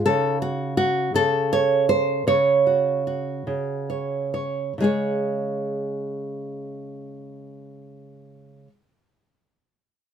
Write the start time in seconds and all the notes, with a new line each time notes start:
0.06 C#3 A4
0.42 F#4
0.77 F#4
1.14 C#3 A4
1.53 C#5
1.89 C5
2.27 C#3 C#5
2.67 F#4
3.07 F#4
3.47 C#3
3.90 C#5
4.34 C#5
4.78 C#3 G#3
4.82 G#4 C#5